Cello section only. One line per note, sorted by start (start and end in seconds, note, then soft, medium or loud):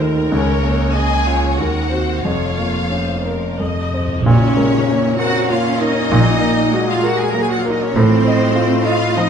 0.00 0.27 D#3 medium
0.31 1.55 C#3 medium
1.57 2.24 D#3 medium
2.24 4.04 F2 soft
4.25 5.15 C#4 medium
5.19 5.50 F#4 medium
5.49 5.81 F4 medium
5.81 6.89 D#4 medium
6.90 7.07 F4 medium
7.08 7.21 F#4 medium
7.20 7.31 G#4 medium
7.32 7.41 A#4 medium
7.41 7.50 G#4 medium
7.50 7.60 F#4 medium
7.59 7.71 F4 medium
7.70 7.83 D#4 medium
7.84 7.96 C#4 medium
7.96 8.86 C4 loud
8.86 9.16 F4 loud
9.16 9.29 D#4 medium